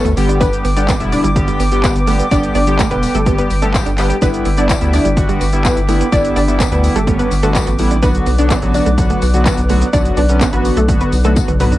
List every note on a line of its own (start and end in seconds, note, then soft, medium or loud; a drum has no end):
0.00 0.27 B3 medium
0.00 0.14 A4 medium
0.00 0.27 B4 medium
0.00 0.14 C#5 medium
0.00 0.14 E5 medium
0.00 0.14 C#6 loud
0.05 0.14 D2 medium
0.05 0.13 B3 medium
0.05 closed hi-hat medium
0.05 shaker medium
0.17 0.52 G1 loud
0.17 0.65 D3 medium
0.17 0.65 G3 medium
0.17 0.65 B3 medium
0.17 0.65 G4 medium
0.17 11.78 B4 medium
0.17 4.05 D5 medium
0.17 7.99 G5 medium
0.17 4.05 D6 loud
0.17 muted clean electric guitar stroke medium
0.17 open hi-hat medium
0.17 tambourine medium
0.17 shaker medium
0.29 0.37 D4 medium
0.29 closed hi-hat medium
0.29 shaker medium
0.41 0.51 B3 medium
0.41 0.49 D4 medium
0.41 0.50 B4 loud
0.41 kick loud
0.41 closed hi-hat medium
0.41 tambourine medium
0.41 shaker medium
0.53 closed hi-hat medium
0.53 shaker medium
0.65 0.91 G1 loud
0.65 0.72 B3 medium
0.65 open hi-hat medium
0.65 tambourine soft
0.65 shaker medium
0.77 0.94 D3 medium
0.77 0.94 G3 medium
0.77 0.94 B3 medium
0.77 0.87 D4 medium
0.77 0.95 G4 medium
0.77 0.86 D5 medium
0.77 muted clean electric guitar stroke soft
0.77 closed hi-hat medium
0.77 shaker medium
0.89 0.96 B3 medium
0.89 kick loud
0.89 clap loud
0.89 closed hi-hat medium
0.89 tambourine medium
0.89 shaker medium
1.00 1.18 E1 medium
1.00 1.27 D3 medium
1.00 1.27 G3 medium
1.00 1.27 B3 medium
1.00 1.27 E4 medium
1.00 muted clean electric guitar stroke medium
1.00 closed hi-hat medium
1.00 shaker medium
1.12 1.58 D4 medium
1.12 1.57 D5 medium
1.12 open hi-hat medium
1.12 tambourine medium
1.12 shaker medium
1.24 1.51 G1 medium
1.24 1.32 G3 medium
1.24 closed hi-hat medium
1.24 shaker medium
1.36 1.63 D3 medium
1.36 1.63 G3 medium
1.36 1.63 B3 medium
1.36 1.63 G4 medium
1.36 muted clean electric guitar stroke soft
1.36 kick loud
1.36 closed hi-hat medium
1.36 shaker medium
1.48 1.56 G3 medium
1.48 closed hi-hat medium
1.48 shaker medium
1.60 1.86 G1 loud
1.60 1.68 B3 medium
1.60 open hi-hat medium
1.60 tambourine medium
1.60 shaker medium
1.72 1.98 D3 medium
1.72 1.99 G3 medium
1.72 1.99 B3 medium
1.72 1.99 G4 medium
1.72 closed hi-hat medium
1.72 shaker medium
1.84 2.18 B3 medium
1.84 2.17 B4 medium
1.84 muted clean electric guitar stroke soft
1.84 kick loud
1.84 clap loud
1.84 closed hi-hat medium
1.84 tambourine medium
1.84 shaker medium
1.95 2.22 G1 medium
1.95 closed hi-hat medium
1.95 shaker medium
2.07 2.25 D3 medium
2.07 2.25 G3 medium
2.07 2.15 A3 medium
2.07 2.25 B3 medium
2.07 2.25 G4 medium
2.07 open hi-hat medium
2.07 tambourine medium
2.07 shaker medium
2.20 2.27 B3 medium
2.20 closed hi-hat medium
2.20 shaker medium
2.31 2.49 G1 loud
2.31 2.58 D3 medium
2.31 2.58 G3 medium
2.31 2.58 B3 medium
2.31 2.39 D4 loud
2.31 2.51 D4 medium
2.31 2.58 G4 medium
2.31 2.51 D5 loud
2.31 kick loud
2.31 closed hi-hat medium
2.31 tambourine medium
2.31 shaker medium
2.43 closed hi-hat medium
2.43 shaker medium
2.55 2.81 G1 loud
2.55 2.63 B3 medium
2.55 2.75 D4 medium
2.55 2.74 D5 medium
2.55 open hi-hat medium
2.55 shaker medium
2.67 2.85 D3 medium
2.67 2.85 G3 medium
2.67 2.85 B3 medium
2.67 2.85 G4 medium
2.67 muted clean electric guitar stroke soft
2.67 closed hi-hat medium
2.67 shaker medium
2.79 2.87 A3 loud
2.79 kick loud
2.79 clap loud
2.79 closed hi-hat medium
2.79 tambourine medium
2.79 shaker medium
2.91 3.08 E1 loud
2.91 3.17 D3 medium
2.91 3.18 G3 medium
2.91 3.18 B3 medium
2.91 3.01 B3 medium
2.91 3.18 G4 medium
2.91 3.00 B4 medium
2.91 muted clean electric guitar stroke soft
2.91 closed hi-hat medium
2.91 shaker medium
3.03 open hi-hat medium
3.03 tambourine medium
3.03 shaker medium
3.15 3.41 G1 loud
3.15 3.22 G3 medium
3.15 3.25 A3 medium
3.15 3.24 A4 medium
3.15 closed hi-hat medium
3.15 shaker medium
3.26 3.53 D3 medium
3.26 3.53 G3 medium
3.26 3.53 B3 medium
3.26 3.34 B3 medium
3.26 3.53 G4 medium
3.26 kick loud
3.26 closed hi-hat medium
3.26 shaker medium
3.38 3.48 B3 medium
3.38 3.48 B4 medium
3.38 muted clean electric guitar stroke soft
3.38 closed hi-hat medium
3.38 shaker medium
3.50 3.77 G1 loud
3.50 open hi-hat medium
3.50 tambourine medium
3.50 shaker medium
3.62 3.89 D3 medium
3.62 3.89 G3 medium
3.62 3.72 A3 medium
3.62 3.89 B3 medium
3.62 3.70 D4 medium
3.62 3.89 G4 medium
3.62 3.72 A4 medium
3.62 closed hi-hat medium
3.62 shaker medium
3.74 kick loud
3.74 clap loud
3.74 closed hi-hat medium
3.74 tambourine medium
3.74 shaker medium
3.86 4.13 G1 medium
3.86 3.94 D4 medium
3.86 closed hi-hat medium
3.86 shaker medium
3.98 4.16 D3 medium
3.98 4.16 G3 medium
3.98 4.16 B3 medium
3.98 4.08 B3 medium
3.98 4.16 G4 medium
3.98 4.08 B4 medium
3.98 muted clean electric guitar stroke soft
3.98 clap medium
3.98 open hi-hat medium
3.98 tambourine medium
3.98 shaker medium
4.10 4.17 B3 medium
4.10 closed hi-hat medium
4.10 shaker medium
4.22 4.39 G1 loud
4.22 4.48 D3 medium
4.22 4.48 G3 medium
4.22 4.49 B3 medium
4.22 4.32 B3 medium
4.22 4.30 D4 medium
4.22 4.49 E4 medium
4.22 4.32 B4 loud
4.22 7.99 E5 medium
4.22 11.78 D6 medium
4.22 kick loud
4.22 closed hi-hat medium
4.22 tambourine medium
4.22 shaker medium
4.34 closed hi-hat medium
4.34 shaker medium
4.45 4.72 G1 loud
4.45 4.53 B3 medium
4.45 open hi-hat medium
4.45 shaker medium
4.57 4.75 D3 medium
4.57 4.75 G3 medium
4.57 4.75 B3 medium
4.57 4.68 D4 medium
4.57 4.75 E4 medium
4.57 4.67 D5 medium
4.57 muted clean electric guitar stroke soft
4.57 closed hi-hat medium
4.57 shaker medium
4.69 4.77 B3 medium
4.69 kick loud
4.69 clap loud
4.69 closed hi-hat medium
4.69 tambourine medium
4.69 shaker medium
4.81 4.99 D2 medium
4.81 5.08 D3 medium
4.81 5.08 G3 medium
4.81 5.08 B3 medium
4.81 5.08 E4 medium
4.81 muted clean electric guitar stroke soft
4.81 closed hi-hat soft
4.81 shaker soft
4.93 5.39 D4 medium
4.93 5.38 D5 medium
4.93 open hi-hat medium
4.93 tambourine medium
4.93 shaker medium
5.05 5.32 G1 medium
5.05 5.13 G3 medium
5.05 closed hi-hat medium
5.05 shaker medium
5.17 5.43 D3 medium
5.17 5.44 G3 medium
5.17 5.44 B3 medium
5.17 5.44 F#4 medium
5.17 muted clean electric guitar stroke soft
5.17 kick loud
5.17 closed hi-hat medium
5.17 shaker medium
5.29 5.37 G3 medium
5.29 closed hi-hat medium
5.29 shaker medium
5.41 5.67 G1 loud
5.41 5.49 B3 medium
5.41 open hi-hat medium
5.41 tambourine medium
5.41 shaker medium
5.53 5.79 D3 medium
5.53 5.79 G3 medium
5.53 5.79 B3 medium
5.53 5.80 E4 medium
5.53 closed hi-hat medium
5.53 shaker medium
5.65 5.99 B3 medium
5.65 5.98 B4 medium
5.65 muted clean electric guitar stroke soft
5.65 kick loud
5.65 clap loud
5.65 closed hi-hat medium
5.65 tambourine medium
5.65 shaker medium
5.77 6.03 G1 medium
5.77 closed hi-hat medium
5.77 shaker medium
5.88 6.06 D3 medium
5.88 6.06 G3 medium
5.88 5.96 A3 medium
5.88 6.06 B3 medium
5.88 6.06 E4 medium
5.88 open hi-hat medium
5.88 tambourine medium
5.88 shaker medium
6.01 6.08 B3 medium
6.01 closed hi-hat medium
6.01 shaker medium
6.12 6.30 G1 loud
6.12 6.39 D3 medium
6.12 6.39 G3 medium
6.12 6.39 B3 medium
6.12 6.20 D4 loud
6.12 6.32 D4 medium
6.12 6.39 E4 medium
6.12 6.31 D5 loud
6.12 kick loud
6.12 closed hi-hat medium
6.12 tambourine medium
6.12 shaker medium
6.25 closed hi-hat medium
6.25 shaker medium
6.36 6.63 G1 loud
6.36 6.44 B3 medium
6.36 6.56 D4 medium
6.36 6.55 D5 medium
6.36 open hi-hat medium
6.36 tambourine soft
6.36 shaker medium
6.48 6.66 D3 medium
6.48 6.66 G3 medium
6.48 6.66 B3 medium
6.48 6.66 E4 medium
6.48 muted clean electric guitar stroke soft
6.48 closed hi-hat medium
6.48 shaker medium
6.60 6.68 B3 loud
6.60 kick loud
6.60 clap loud
6.60 closed hi-hat medium
6.60 tambourine medium
6.60 shaker medium
6.71 6.89 D2 medium
6.71 6.98 D3 medium
6.71 6.98 G3 medium
6.71 6.98 B3 medium
6.71 6.82 B3 medium
6.71 6.98 E4 medium
6.71 6.81 B4 medium
6.71 muted clean electric guitar stroke soft
6.71 closed hi-hat medium
6.71 shaker medium
6.84 open hi-hat medium
6.84 tambourine medium
6.84 shaker medium
6.96 7.22 G1 loud
6.96 7.03 G3 medium
6.96 7.06 A3 medium
6.96 7.05 A4 medium
6.96 closed hi-hat medium
6.96 shaker medium
7.07 7.34 D3 medium
7.07 7.34 G3 medium
7.07 7.15 A3 medium
7.07 7.34 B3 medium
7.07 7.34 C#4 medium
7.07 kick loud
7.07 closed hi-hat medium
7.07 shaker medium
7.19 7.29 B3 medium
7.19 7.29 B4 medium
7.19 muted clean electric guitar stroke soft
7.19 closed hi-hat medium
7.19 shaker medium
7.31 7.58 G1 loud
7.31 open hi-hat medium
7.31 tambourine medium
7.31 shaker medium
7.43 7.70 D3 medium
7.43 7.70 G3 medium
7.43 7.53 A3 medium
7.43 7.70 B3 medium
7.43 7.51 B3 medium
7.43 7.70 F#4 medium
7.43 7.53 A4 medium
7.43 closed hi-hat medium
7.43 shaker medium
7.55 7.89 B3 medium
7.55 7.89 B4 medium
7.55 kick loud
7.55 clap loud
7.55 closed hi-hat medium
7.55 tambourine medium
7.55 shaker medium
7.67 8.04 A1 medium
7.67 7.75 B3 medium
7.67 closed hi-hat medium
7.67 shaker medium
7.79 7.97 D3 medium
7.79 7.97 G3 medium
7.79 7.97 B3 medium
7.79 7.97 E4 medium
7.79 muted clean electric guitar stroke soft
7.79 open hi-hat medium
7.79 tambourine soft
7.79 shaker medium
7.91 7.99 D4 medium
7.91 closed hi-hat medium
7.91 shaker medium
8.03 8.20 B1 loud
8.03 8.29 D3 medium
8.03 8.29 F#3 medium
8.03 8.30 B3 medium
8.03 8.13 B3 medium
8.03 8.11 D4 medium
8.03 8.30 F#4 medium
8.03 8.12 B4 loud
8.03 11.78 D5 medium
8.03 11.78 F#5 medium
8.03 kick loud
8.03 closed hi-hat medium
8.03 tambourine medium
8.03 shaker medium
8.15 closed hi-hat medium
8.15 shaker medium
8.27 8.53 B1 loud
8.27 8.35 B3 medium
8.27 open hi-hat medium
8.27 tambourine soft
8.27 shaker medium
8.38 8.56 D3 medium
8.38 8.56 F#3 medium
8.38 8.56 B3 medium
8.38 8.56 D4 medium
8.38 8.49 D4 medium
8.38 8.48 D5 medium
8.38 muted clean electric guitar stroke soft
8.38 closed hi-hat medium
8.38 shaker medium
8.50 8.58 B3 medium
8.50 kick loud
8.50 clap loud
8.50 closed hi-hat medium
8.50 tambourine medium
8.50 shaker medium
8.62 8.80 A1 medium
8.62 8.89 D3 medium
8.62 8.89 F#3 medium
8.62 8.89 B3 medium
8.62 8.89 F#4 medium
8.62 muted clean electric guitar stroke soft
8.62 closed hi-hat medium
8.62 shaker medium
8.74 9.20 D4 medium
8.74 9.19 D5 medium
8.74 open hi-hat medium
8.74 tambourine medium
8.74 shaker medium
8.86 9.13 B1 medium
8.86 8.94 A3 medium
8.86 closed hi-hat medium
8.86 shaker medium
8.98 9.25 D3 medium
8.98 9.25 F#3 medium
8.98 9.25 B3 medium
8.98 9.25 F#4 medium
8.98 muted clean electric guitar stroke soft
8.98 kick loud
8.98 closed hi-hat medium
8.98 tambourine soft
8.98 shaker medium
9.10 9.18 A3 medium
9.10 closed hi-hat medium
9.10 shaker medium
9.22 9.48 B1 loud
9.22 9.30 B3 medium
9.22 open hi-hat medium
9.22 tambourine medium
9.22 shaker medium
9.34 9.60 D3 medium
9.34 9.60 F#3 medium
9.34 9.61 B3 medium
9.34 9.61 F#4 medium
9.34 closed hi-hat medium
9.34 shaker medium
9.46 9.80 B3 medium
9.46 9.79 B4 medium
9.46 muted clean electric guitar stroke soft
9.46 kick loud
9.46 clap loud
9.46 closed hi-hat medium
9.46 tambourine medium
9.46 shaker medium
9.58 9.84 B1 loud
9.58 closed hi-hat medium
9.58 shaker medium
9.69 9.87 D3 medium
9.69 9.87 F#3 medium
9.69 9.77 A3 medium
9.69 9.87 B3 medium
9.69 9.87 F#4 medium
9.69 open hi-hat medium
9.69 tambourine soft
9.69 shaker medium
9.82 9.89 B3 medium
9.82 closed hi-hat medium
9.82 shaker medium
9.93 10.11 B1 loud
9.93 10.20 D3 medium
9.93 10.20 F#3 medium
9.93 10.20 B3 medium
9.93 10.01 D4 loud
9.93 10.13 D4 medium
9.93 10.20 F#4 medium
9.93 10.12 D5 loud
9.93 kick loud
9.93 closed hi-hat medium
9.93 tambourine medium
9.93 shaker medium
10.05 closed hi-hat medium
10.05 shaker medium
10.17 10.43 B1 loud
10.17 10.25 B3 medium
10.17 10.37 D4 medium
10.17 10.36 D5 medium
10.17 open hi-hat medium
10.17 shaker medium
10.29 10.47 D3 medium
10.29 10.47 F#3 medium
10.29 10.47 B3 medium
10.29 10.47 C#4 medium
10.29 muted clean electric guitar stroke soft
10.29 closed hi-hat medium
10.29 shaker medium
10.41 10.49 B3 medium
10.41 kick loud
10.41 clap loud
10.41 closed hi-hat medium
10.41 tambourine medium
10.41 shaker medium
10.53 10.70 A1 medium
10.53 10.79 D3 medium
10.53 10.79 F#3 medium
10.53 10.79 B3 medium
10.53 10.63 B3 medium
10.53 10.80 F#4 medium
10.53 10.62 B4 medium
10.53 muted clean electric guitar stroke soft
10.53 closed hi-hat medium
10.53 shaker medium
10.65 open hi-hat medium
10.65 tambourine medium
10.65 shaker medium
10.77 11.03 B1 medium
10.77 10.85 A3 medium
10.77 10.87 A3 medium
10.77 10.86 A4 medium
10.77 closed hi-hat medium
10.77 shaker medium
10.88 11.15 D3 medium
10.88 11.15 F#3 medium
10.88 10.96 A3 medium
10.88 11.15 B3 medium
10.88 11.15 F#4 medium
10.88 kick loud
10.88 closed hi-hat medium
10.88 shaker medium
11.01 11.11 B3 medium
11.01 11.10 B4 medium
11.01 muted clean electric guitar stroke soft
11.01 closed hi-hat medium
11.01 shaker medium
11.12 11.39 B1 loud
11.12 open hi-hat medium
11.12 tambourine medium
11.12 shaker medium
11.24 11.51 D3 medium
11.24 11.51 F#3 medium
11.24 11.35 A3 medium
11.24 11.51 B3 medium
11.24 11.32 B3 medium
11.24 11.51 F#4 medium
11.24 11.34 A4 medium
11.24 closed hi-hat medium
11.24 shaker medium
11.36 kick loud
11.36 closed hi-hat medium
11.36 high tom medium
11.36 tambourine medium
11.36 shaker medium
11.48 11.74 B1 medium
11.48 11.56 B3 medium
11.48 closed hi-hat medium
11.48 mid tom medium
11.48 shaker medium
11.60 11.78 D3 medium
11.60 11.78 F#3 medium
11.60 11.78 B3 medium
11.60 11.70 B3 medium
11.60 11.78 F#4 medium
11.60 11.70 B4 medium
11.60 muted clean electric guitar stroke soft
11.60 mid tom loud
11.60 open hi-hat medium
11.60 tambourine medium
11.60 shaker medium
11.72 11.78 D4 medium
11.72 closed hi-hat medium
11.72 floor tom loud
11.72 shaker medium